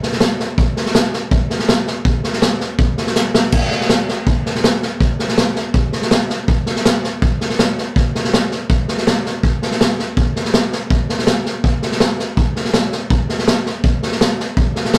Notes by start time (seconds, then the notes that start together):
0.03 snare
0.12 snare
0.20 snare, hi-hat pedal
0.40 snare
0.58 kick, snare
0.76 snare
0.86 snare
0.95 snare, hi-hat pedal
1.13 snare
1.31 kick, snare
1.50 snare
1.59 snare
1.69 snare, hi-hat pedal
1.87 snare
2.05 kick, snare
2.24 snare
2.33 snare
2.42 snare, hi-hat pedal
2.60 snare
2.78 kick, snare
2.97 snare
3.07 snare
3.16 snare, hi-hat pedal
3.35 snare
3.52 kick, snare, crash
3.71 snare
3.81 snare
3.89 snare, hi-hat pedal
4.08 snare
4.27 kick, snare
4.46 snare
4.55 snare
4.64 snare, hi-hat pedal
4.82 snare
5.00 kick, snare
5.19 snare
5.28 snare
5.38 snare, hi-hat pedal
5.56 snare
5.74 kick, snare
5.92 snare
6.02 snare
6.11 snare, hi-hat pedal
6.30 snare
6.48 kick, snare
6.66 snare
6.76 snare
6.85 snare, hi-hat pedal
7.04 snare
7.22 kick, snare
7.41 snare
7.50 snare
7.59 snare, hi-hat pedal
7.78 snare
7.96 kick, snare
8.15 snare
8.24 snare
8.34 snare, hi-hat pedal
8.51 snare
8.70 kick, snare
8.88 snare
8.98 snare
9.07 snare, hi-hat pedal
9.26 snare
9.43 kick, snare
9.62 snare
9.71 snare
9.81 snare, hi-hat pedal
9.99 snare
10.17 kick, snare
10.36 snare
10.45 snare
10.54 snare, hi-hat pedal
10.72 snare
10.90 kick, snare
11.09 snare
11.19 snare
11.27 snare, hi-hat pedal
11.46 snare
11.64 kick, snare
11.82 snare
11.92 snare
12.00 snare, hi-hat pedal
12.19 snare
12.37 kick, snare
12.56 snare
12.65 snare
12.73 snare, hi-hat pedal
12.92 snare
13.10 kick, snare
13.29 snare
13.39 snare
13.48 snare, hi-hat pedal
13.66 snare
13.84 kick, snare
14.02 snare
14.12 snare
14.21 snare, hi-hat pedal
14.40 snare
14.57 kick, snare
14.76 snare
14.85 snare
14.94 snare, hi-hat pedal